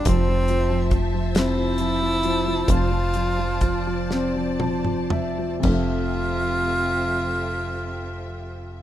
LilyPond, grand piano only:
<<
  \new Staff \with { instrumentName = "Grand piano" } { \time 6/8 \key f \major \tempo 4. = 41 r2. | r2 a''8 e''8 | r2. | }
  \new Staff \with { instrumentName = "Grand piano" } { \clef bass \time 6/8 \key f \major f16 f16 f16 f16 f16 f16 c'16 f16 f16 f16 f16 f16 | f16 f16 f16 f16 f16 f16 c'16 f16 f16 f16 f16 f16 | <f, c f a c' e''>2. | }
>>